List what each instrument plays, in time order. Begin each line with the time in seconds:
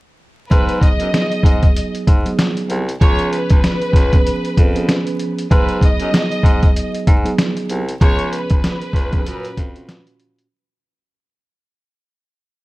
0.50 baritone saxophone G#2, tine electric piano F#3 B3 D#4 G#4, violin section B4, kick, closed hi-hat
0.69 closed hi-hat
0.81 violin section D#5, kick, closed hi-hat
1.00 baritone saxophone F#2, closed hi-hat
1.12 tine electric piano F#3 B3 D#4 G#4, snare, closed hi-hat
1.32 closed hi-hat
1.43 baritone saxophone G#2, kick, closed hi-hat
1.63 kick, closed hi-hat
1.77 closed hi-hat
1.95 closed hi-hat
2.07 baritone saxophone G#2, kick, closed hi-hat
2.25 tine electric piano F#3 B3 D#4 G#4, closed hi-hat
2.39 snare, closed hi-hat
2.57 closed hi-hat
2.70 baritone saxophone C2, closed hi-hat
2.89 closed hi-hat
3.01 baritone saxophone C#2, tine electric piano F3 B3 C#4 G#4, violin section C#5, kick, closed hi-hat
3.19 closed hi-hat
3.32 violin section B4, closed hi-hat
3.50 baritone saxophone C#2, kick, closed hi-hat
3.64 snare, closed hi-hat
3.82 closed hi-hat
3.93 baritone saxophone C#2, kick, snare, closed hi-hat
4.13 tine electric piano F3 B3 C#4 G#4, kick, closed hi-hat
4.27 closed hi-hat
4.45 closed hi-hat
4.57 baritone saxophone F2, kick, closed hi-hat
4.74 tine electric piano F3 B3 C#4 G#4, closed hi-hat
4.89 snare, closed hi-hat
5.07 closed hi-hat
5.20 closed hi-hat
5.39 closed hi-hat
5.51 baritone saxophone G#2, tine electric piano F#3 B3 D#4 G#4, violin section B4, kick, closed hi-hat
5.69 closed hi-hat
5.81 violin section D#5, kick, closed hi-hat
6.00 baritone saxophone F#2, closed hi-hat
6.11 tine electric piano F#3 B3 D#4 G#4, snare, closed hi-hat
6.32 closed hi-hat
6.43 baritone saxophone G#2, kick, closed hi-hat
6.63 kick, closed hi-hat
6.76 closed hi-hat
6.95 closed hi-hat
7.07 baritone saxophone G#2, kick, closed hi-hat
7.24 tine electric piano F#3 B3 D#4 G#4, closed hi-hat
7.38 snare, closed hi-hat
7.57 closed hi-hat
7.70 baritone saxophone C2, closed hi-hat
7.89 closed hi-hat
8.01 baritone saxophone C#2, tine electric piano F3 B3 C#4 G#4, violin section C#5, kick, closed hi-hat
8.19 closed hi-hat
8.32 violin section B4, closed hi-hat
8.50 baritone saxophone C#2, kick, closed hi-hat
8.64 snare, closed hi-hat
8.82 closed hi-hat
8.93 baritone saxophone C#2, kick, snare, closed hi-hat
9.11 tine electric piano F3 B3 C#4 G#4, kick, closed hi-hat
9.26 baritone saxophone F#2, tine electric piano A#2 C#4 F4 F#4, closed hi-hat
9.45 closed hi-hat
9.57 baritone saxophone F2, kick, closed hi-hat
9.75 tine electric piano A#2 C#4 F4 F#4, closed hi-hat
9.89 snare, closed hi-hat
10.07 closed hi-hat
10.20 closed hi-hat
10.39 closed hi-hat